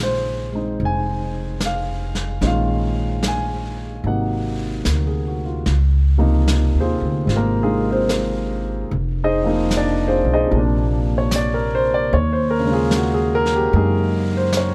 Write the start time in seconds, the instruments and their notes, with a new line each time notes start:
Already playing: upright bass A#1, upright piano D#3 G#3 C#4 F4
0.03 upright piano C5
0.52 upright piano G#3 C4 D#4
0.79 upright bass F1, brush sweep
0.85 upright piano G#5
1.60 snare, hi-hat pedal
1.66 upright piano F5
2.15 snare
2.41 upright bass A#1, upright piano D#3 G#3 C#4 F4, brush sweep, snare
2.47 upright piano F5
3.23 snare, hi-hat pedal
3.28 upright piano G#5
4.04 upright bass G#1, upright piano C3 F#3 A#3 D#4 F#5, brush sweep
4.85 upright bass D2, upright piano A#4, snare, hi-hat pedal
5.07 upright piano G#4
5.27 upright piano F#4
5.45 upright piano F4
5.66 upright bass C#2, brush sweep, snare
6.18 upright piano C3 F3 A#3 D#4
6.48 snare, hi-hat pedal
6.75 upright bass D#2
6.80 upright piano C4 F4 G#4 C5
7.01 upright bass D2
7.25 upright bass G#1, upright piano G#3 C4 F4, brush sweep, snare
7.36 upright piano A#3 A#4
7.63 upright piano G#3 D#4 F4 G#4
7.91 upright piano C4 F4 G#4 C5
8.09 snare, hi-hat pedal
8.90 upright bass F1, brush sweep
9.24 upright piano D#4 G#4 C5 D#5
9.42 upright piano F3 C4
9.46 upright piano A#3 D#4
9.71 snare, hi-hat pedal
9.77 upright piano D4 D5
10.08 upright piano C4 F4 G#4 C5
10.24 upright bass B1
10.33 upright piano D#4 G#4 C5 D#5
10.47 upright piano C3 F3
10.51 upright bass A#1, upright piano A#3, brush sweep
10.57 upright piano D4
11.18 upright piano C#5
11.31 snare, hi-hat pedal
11.36 upright piano D5
11.54 upright piano A#4
11.75 upright piano C5
11.94 upright piano D5
12.11 upright bass D#2, upright piano C#5, brush sweep
12.33 upright piano C5
12.51 upright piano A#4
12.59 upright piano C#3
12.64 upright piano G#3 C#4
12.71 upright piano F4 G#4
12.91 snare, hi-hat pedal
12.96 upright piano F#4
13.14 upright piano G#4
13.35 upright piano A#4
13.46 snare
13.55 upright piano G4
13.72 upright bass F#2, upright piano G#3 A#3 G#4, brush sweep
13.76 upright piano D#4
14.37 upright piano C5
14.53 snare, hi-hat pedal
14.57 upright piano C#5